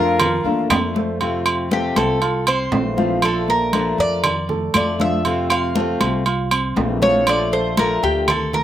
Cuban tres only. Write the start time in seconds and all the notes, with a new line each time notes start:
Already playing: A#4
1.73 G4
1.97 A4
2.48 C5
3.25 A4
3.50 A#4
4.00 D5
4.76 D5
5.01 E5
5.52 F5
7.02 C#5
7.29 D5
7.53 C5
7.79 A#4
8.04 G4
8.30 A4
8.54 A#4